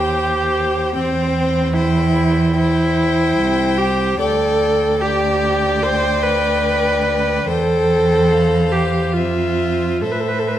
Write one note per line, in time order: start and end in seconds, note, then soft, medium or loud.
0.00 0.96 D#2 medium
0.00 0.95 G4 medium
0.00 0.93 C5 medium
0.00 0.92 G5 medium
0.95 3.38 E2 medium
0.95 1.75 C4 medium
0.95 1.74 C5 medium
0.95 1.73 G5 medium
1.74 2.55 E4 medium
1.74 2.55 C5 medium
1.74 2.55 G5 medium
2.56 3.79 E4 medium
2.56 4.18 C5 medium
2.56 4.18 G5 medium
3.38 4.19 C2 medium
3.77 4.19 G4 medium
4.19 7.45 D2 medium
4.19 5.03 A4 medium
4.19 5.00 D5 medium
4.19 5.00 G5 medium
5.01 5.84 G4 medium
5.01 7.44 D5 medium
5.01 7.45 G5 medium
5.83 6.24 C5 medium
6.23 7.49 B4 medium
7.48 9.15 E2 medium
7.48 8.73 A4 loud
7.48 9.10 C5 medium
7.48 8.32 G5 soft
8.31 9.18 F5 medium
8.72 9.15 G4 medium
9.13 10.04 F2 medium
9.13 10.03 F4 medium
9.13 10.01 C5 medium
9.13 10.03 E5 medium
10.01 10.59 A2 medium
10.01 10.13 A4 medium
10.01 10.59 C5 soft
10.01 10.59 E5 soft
10.12 10.21 B4 medium
10.20 10.30 A4 medium
10.28 10.41 B4 medium
10.39 10.49 A4 medium
10.48 10.58 B4 soft